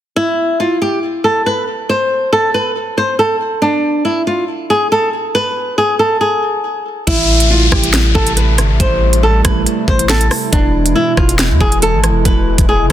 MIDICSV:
0, 0, Header, 1, 6, 480
1, 0, Start_track
1, 0, Key_signature, 0, "minor"
1, 0, Tempo, 431655
1, 186, Time_signature, 4, 2, 24, 8
1, 14369, End_track
2, 0, Start_track
2, 0, Title_t, "Nylon-string guitar"
2, 0, Program_c, 0, 24
2, 183, Note_on_c, 0, 64, 102
2, 635, Note_off_c, 0, 64, 0
2, 666, Note_on_c, 0, 65, 88
2, 848, Note_off_c, 0, 65, 0
2, 908, Note_on_c, 0, 67, 82
2, 1090, Note_off_c, 0, 67, 0
2, 1381, Note_on_c, 0, 69, 76
2, 1565, Note_off_c, 0, 69, 0
2, 1627, Note_on_c, 0, 71, 75
2, 1809, Note_off_c, 0, 71, 0
2, 2106, Note_on_c, 0, 72, 89
2, 2557, Note_off_c, 0, 72, 0
2, 2586, Note_on_c, 0, 69, 80
2, 2768, Note_off_c, 0, 69, 0
2, 2828, Note_on_c, 0, 71, 74
2, 3010, Note_off_c, 0, 71, 0
2, 3309, Note_on_c, 0, 72, 82
2, 3491, Note_off_c, 0, 72, 0
2, 3547, Note_on_c, 0, 69, 81
2, 3729, Note_off_c, 0, 69, 0
2, 4023, Note_on_c, 0, 62, 97
2, 4475, Note_off_c, 0, 62, 0
2, 4501, Note_on_c, 0, 64, 74
2, 4686, Note_off_c, 0, 64, 0
2, 4748, Note_on_c, 0, 65, 78
2, 4930, Note_off_c, 0, 65, 0
2, 5227, Note_on_c, 0, 68, 88
2, 5409, Note_off_c, 0, 68, 0
2, 5469, Note_on_c, 0, 69, 91
2, 5650, Note_off_c, 0, 69, 0
2, 5947, Note_on_c, 0, 71, 95
2, 6397, Note_off_c, 0, 71, 0
2, 6426, Note_on_c, 0, 68, 76
2, 6608, Note_off_c, 0, 68, 0
2, 6664, Note_on_c, 0, 69, 80
2, 6847, Note_off_c, 0, 69, 0
2, 6903, Note_on_c, 0, 68, 76
2, 7820, Note_off_c, 0, 68, 0
2, 7862, Note_on_c, 0, 64, 103
2, 8315, Note_off_c, 0, 64, 0
2, 8345, Note_on_c, 0, 65, 91
2, 8528, Note_off_c, 0, 65, 0
2, 8587, Note_on_c, 0, 67, 84
2, 8769, Note_off_c, 0, 67, 0
2, 9060, Note_on_c, 0, 69, 78
2, 9245, Note_off_c, 0, 69, 0
2, 9306, Note_on_c, 0, 71, 78
2, 9488, Note_off_c, 0, 71, 0
2, 9786, Note_on_c, 0, 72, 94
2, 10237, Note_off_c, 0, 72, 0
2, 10266, Note_on_c, 0, 69, 83
2, 10448, Note_off_c, 0, 69, 0
2, 10509, Note_on_c, 0, 71, 79
2, 10690, Note_off_c, 0, 71, 0
2, 10989, Note_on_c, 0, 72, 83
2, 11170, Note_off_c, 0, 72, 0
2, 11226, Note_on_c, 0, 69, 87
2, 11409, Note_off_c, 0, 69, 0
2, 11703, Note_on_c, 0, 62, 101
2, 12155, Note_off_c, 0, 62, 0
2, 12182, Note_on_c, 0, 64, 81
2, 12366, Note_off_c, 0, 64, 0
2, 12429, Note_on_c, 0, 65, 86
2, 12610, Note_off_c, 0, 65, 0
2, 12909, Note_on_c, 0, 68, 96
2, 13090, Note_off_c, 0, 68, 0
2, 13150, Note_on_c, 0, 69, 93
2, 13331, Note_off_c, 0, 69, 0
2, 13629, Note_on_c, 0, 71, 98
2, 14078, Note_off_c, 0, 71, 0
2, 14107, Note_on_c, 0, 68, 77
2, 14289, Note_off_c, 0, 68, 0
2, 14369, End_track
3, 0, Start_track
3, 0, Title_t, "Analog synth pad"
3, 0, Program_c, 1, 89
3, 7865, Note_on_c, 1, 55, 79
3, 7865, Note_on_c, 1, 57, 79
3, 7865, Note_on_c, 1, 64, 97
3, 7866, Note_on_c, 1, 48, 86
3, 11667, Note_off_c, 1, 48, 0
3, 11667, Note_off_c, 1, 55, 0
3, 11667, Note_off_c, 1, 57, 0
3, 11705, Note_on_c, 1, 52, 79
3, 11705, Note_on_c, 1, 56, 77
3, 11706, Note_on_c, 1, 47, 83
3, 14369, Note_off_c, 1, 47, 0
3, 14369, Note_off_c, 1, 52, 0
3, 14369, Note_off_c, 1, 56, 0
3, 14369, Note_off_c, 1, 64, 0
3, 14369, End_track
4, 0, Start_track
4, 0, Title_t, "808-style bass"
4, 0, Program_c, 2, 38
4, 7865, Note_on_c, 2, 33, 112
4, 8557, Note_off_c, 2, 33, 0
4, 8585, Note_on_c, 2, 33, 109
4, 9046, Note_off_c, 2, 33, 0
4, 9065, Note_on_c, 2, 33, 107
4, 9546, Note_on_c, 2, 31, 105
4, 9563, Note_off_c, 2, 33, 0
4, 9673, Note_on_c, 2, 33, 99
4, 9690, Note_off_c, 2, 31, 0
4, 9780, Note_off_c, 2, 33, 0
4, 9785, Note_on_c, 2, 33, 108
4, 10477, Note_off_c, 2, 33, 0
4, 10506, Note_on_c, 2, 33, 104
4, 10736, Note_off_c, 2, 33, 0
4, 10985, Note_on_c, 2, 33, 101
4, 11446, Note_off_c, 2, 33, 0
4, 11706, Note_on_c, 2, 28, 113
4, 12166, Note_off_c, 2, 28, 0
4, 12426, Note_on_c, 2, 28, 106
4, 12793, Note_on_c, 2, 40, 102
4, 12810, Note_off_c, 2, 28, 0
4, 12900, Note_off_c, 2, 40, 0
4, 12905, Note_on_c, 2, 28, 109
4, 13273, Note_on_c, 2, 32, 98
4, 13290, Note_off_c, 2, 28, 0
4, 13450, Note_on_c, 2, 28, 106
4, 13467, Note_off_c, 2, 32, 0
4, 13617, Note_off_c, 2, 28, 0
4, 13626, Note_on_c, 2, 28, 113
4, 13978, Note_off_c, 2, 28, 0
4, 13993, Note_on_c, 2, 28, 102
4, 14233, Note_on_c, 2, 29, 101
4, 14250, Note_off_c, 2, 28, 0
4, 14340, Note_off_c, 2, 29, 0
4, 14369, End_track
5, 0, Start_track
5, 0, Title_t, "Downlifter"
5, 0, Program_c, 3, 103
5, 7866, Note_on_c, 3, 60, 89
5, 11706, Note_off_c, 3, 60, 0
5, 14369, End_track
6, 0, Start_track
6, 0, Title_t, "Drums"
6, 7865, Note_on_c, 9, 36, 112
6, 7865, Note_on_c, 9, 42, 73
6, 7865, Note_on_c, 9, 49, 101
6, 7976, Note_off_c, 9, 42, 0
6, 7976, Note_off_c, 9, 49, 0
6, 7977, Note_off_c, 9, 36, 0
6, 8232, Note_on_c, 9, 42, 76
6, 8343, Note_off_c, 9, 42, 0
6, 8585, Note_on_c, 9, 36, 100
6, 8586, Note_on_c, 9, 37, 101
6, 8696, Note_off_c, 9, 36, 0
6, 8697, Note_off_c, 9, 37, 0
6, 8713, Note_on_c, 9, 42, 88
6, 8824, Note_off_c, 9, 42, 0
6, 8825, Note_on_c, 9, 38, 125
6, 8838, Note_on_c, 9, 26, 103
6, 8936, Note_off_c, 9, 38, 0
6, 8950, Note_off_c, 9, 26, 0
6, 9065, Note_on_c, 9, 36, 96
6, 9176, Note_off_c, 9, 36, 0
6, 9192, Note_on_c, 9, 42, 85
6, 9303, Note_off_c, 9, 42, 0
6, 9306, Note_on_c, 9, 42, 89
6, 9417, Note_off_c, 9, 42, 0
6, 9544, Note_on_c, 9, 42, 85
6, 9545, Note_on_c, 9, 37, 86
6, 9655, Note_off_c, 9, 42, 0
6, 9656, Note_off_c, 9, 37, 0
6, 9785, Note_on_c, 9, 36, 110
6, 9785, Note_on_c, 9, 42, 75
6, 9896, Note_off_c, 9, 42, 0
6, 9897, Note_off_c, 9, 36, 0
6, 10152, Note_on_c, 9, 42, 79
6, 10264, Note_off_c, 9, 42, 0
6, 10505, Note_on_c, 9, 42, 89
6, 10506, Note_on_c, 9, 36, 103
6, 10506, Note_on_c, 9, 37, 97
6, 10616, Note_off_c, 9, 42, 0
6, 10617, Note_off_c, 9, 36, 0
6, 10618, Note_off_c, 9, 37, 0
6, 10747, Note_on_c, 9, 42, 76
6, 10859, Note_off_c, 9, 42, 0
6, 10985, Note_on_c, 9, 36, 95
6, 11096, Note_off_c, 9, 36, 0
6, 11112, Note_on_c, 9, 42, 84
6, 11223, Note_off_c, 9, 42, 0
6, 11225, Note_on_c, 9, 38, 118
6, 11238, Note_on_c, 9, 26, 97
6, 11336, Note_off_c, 9, 38, 0
6, 11349, Note_off_c, 9, 26, 0
6, 11352, Note_on_c, 9, 42, 87
6, 11463, Note_off_c, 9, 42, 0
6, 11464, Note_on_c, 9, 46, 61
6, 11466, Note_on_c, 9, 37, 86
6, 11575, Note_off_c, 9, 46, 0
6, 11577, Note_off_c, 9, 37, 0
6, 11705, Note_on_c, 9, 42, 75
6, 11706, Note_on_c, 9, 36, 116
6, 11817, Note_off_c, 9, 36, 0
6, 11817, Note_off_c, 9, 42, 0
6, 12072, Note_on_c, 9, 42, 80
6, 12183, Note_off_c, 9, 42, 0
6, 12425, Note_on_c, 9, 36, 102
6, 12426, Note_on_c, 9, 37, 100
6, 12537, Note_off_c, 9, 36, 0
6, 12537, Note_off_c, 9, 37, 0
6, 12554, Note_on_c, 9, 42, 89
6, 12665, Note_off_c, 9, 42, 0
6, 12665, Note_on_c, 9, 38, 127
6, 12679, Note_on_c, 9, 26, 105
6, 12777, Note_off_c, 9, 38, 0
6, 12790, Note_off_c, 9, 26, 0
6, 12905, Note_on_c, 9, 36, 96
6, 13016, Note_off_c, 9, 36, 0
6, 13032, Note_on_c, 9, 42, 83
6, 13143, Note_off_c, 9, 42, 0
6, 13146, Note_on_c, 9, 42, 85
6, 13257, Note_off_c, 9, 42, 0
6, 13384, Note_on_c, 9, 42, 84
6, 13385, Note_on_c, 9, 37, 81
6, 13495, Note_off_c, 9, 42, 0
6, 13497, Note_off_c, 9, 37, 0
6, 13625, Note_on_c, 9, 42, 77
6, 13626, Note_on_c, 9, 36, 110
6, 13736, Note_off_c, 9, 42, 0
6, 13737, Note_off_c, 9, 36, 0
6, 13992, Note_on_c, 9, 36, 95
6, 13992, Note_on_c, 9, 42, 77
6, 14103, Note_off_c, 9, 42, 0
6, 14104, Note_off_c, 9, 36, 0
6, 14369, End_track
0, 0, End_of_file